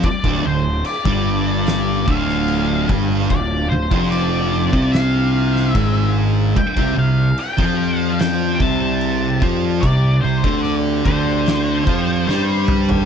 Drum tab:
CC |x---x---x---x---|x---x---x---x---|x---x---x---x---|x---x---x-------|
SD |--------o--o----|--------o--o----|--------o-------|--------o---o---|
T2 |----------------|----------------|----------------|--------------o-|
FT |----------------|----------------|----------------|---------------o|
BD |oo---o----o---o-|o--o---o----o---|oo---o----o---o-|o--o--o---o-----|